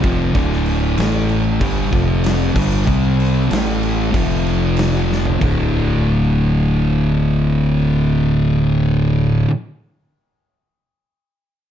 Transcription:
0.03 F1 F2 C3 F3, kick, crash
0.35 D1 D2 A2 D3, kick, crash
0.53 snare
0.66 crash
0.98 A1 A2 E3 A3, snare, crash
1.29 crash
1.60 G1 G2 D3 G3, kick, crash
1.93 F1 F2 C3 F3, kick, crash
2.24 snare, crash
2.55 G1 G2 D3 G3, kick, crash
2.85 C2 C3 G3 C4, kick, crash
3.20 crash
3.50 A1 A2 E3 A3, snare, crash
3.83 crash
4.13 F1 F2 C3 F3, kick, crash
4.46 crash
4.77 snare, crash
5.12 snare
5.25 floor tom
5.40 D1 D2 A2 D3, kick, crash

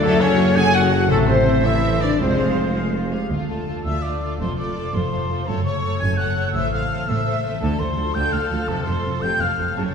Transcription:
Already playing: A3 A4 A5
0.02 F#1 F#2 F#3 A3 F#4 A4 C#5 F#5
0.12 C#3
0.20 C#4 A4 C#5 F#5
0.30 F#4
0.38 F#4 A4 C#5
0.47 C#5
0.56 C#3 G#4 A4 F#5 G#5
0.73 F#4 C#5 F#5
0.83 C#5
0.91 A4 F#5
1.01 F#4
1.08 A1 A2 C3 A3 A4 C5 E5
1.19 E3
1.27 A3 C4 A4 C5
1.37 E4
1.46 A4 C5
1.56 E4
1.63 E3 E4 A4 C5 E5
1.74 A5
1.83 A4 C5 E5
1.93 A4
2.01 D4 E4 A4 C5 D5
2.11 A3
2.19 F1 F2 G#3 C4 F4 G#4 C5 F5
2.30 C3
2.38 C4 G#4 F5
2.48 F4
2.56 F4 G#4 C5
2.67 C5
2.76 G#4 C5 F5
2.85 G#5
2.95 F4 C5 F5
3.04 C5
3.12 G4 G#4 F5
3.23 F4
3.29 D2 D3 A3 F4 F5
3.41 A3
3.49 A3 D4 F4 A4 A5
3.59 F4
3.67 A3 F4 A4
3.77 D5
3.85 D2 A3 F4 E5 F5 E6
3.95 A5
4.02 A3 F4 D5 F5 D6
4.13 D5
4.22 A3 F4
4.31 A3
4.40 F1 F2 A3 F4 A4 C5 C6
4.49 C3
4.58 A3 C4 F4 A4 D5 D6
4.67 F4
4.76 A3 F4 A4
4.85 C5
4.94 F1 F2 A3 F4 A4 C5 F5 C6
5.04 A5
5.12 A3 F4 A4 F5
5.22 C5
5.29 A3 F4 A4
5.39 C3
5.47 F#1 F#2 A3 A4 C#5 A5
5.57 C#3
5.64 A3 A4 C#5 C#6
5.74 C#4
5.83 A3 A4 C#5
5.93 C#4
5.99 F#1 F#2 A3 A4 C#5 G#5 G#6
6.11 A5
6.17 A3 A4 C#5 F#5 F#6
6.29 A4
6.37 A3 C#4 A4 C#5
6.47 C#3
6.53 A1 A2 A3 A4 C5 E5 E6
6.65 E3
6.71 A3 A4 C5 F5 F6
6.83 C4
6.90 A3 A4 C5
7.00 C4
7.08 A1 A2 A3 A4 C5 E5 E6
7.24 A3 A4 C5
7.36 A4
7.43 A3 C4 A4 C5
7.53 E3
7.60 D2 D3 A4 A5
7.72 D4
7.79 D2 A3 C5 C6
7.88 F4
7.97 D2 F3 A4
8.06 F4
8.14 D2 D3 F5 G5 G6
8.32 D2 A3 F5 F6
8.41 A4
8.50 D2 F3 F4
8.59 D4
8.68 F1 F2 C3 A4 A5
8.77 C3
8.85 F1 F2 A3 C5 C6
8.95 F4
9.04 F1 F2 F3 A4
9.14 F4
9.21 F1 F2 C3 F5 G5 G6
9.40 F1 F2 A3 F5 F6
9.49 A4
9.58 F1 F2 F3 F4
9.67 C3
9.75 F#1 F#2 C#3 A4 C#5 A5
9.85 C#3

